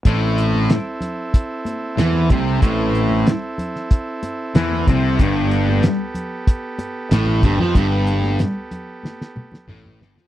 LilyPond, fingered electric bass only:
\new Staff \with { instrumentName = "Fingered electric bass" } { \clef bass \time 4/4 \key a \minor \tempo 4 = 94 a,,4 r2 e,8 c,8 | a,,4 r2 e,8 c,8 | g,,4 r2 a,,8 g,,16 f,16 | g,,4 r2 a,,8 g,,16 f,16 | }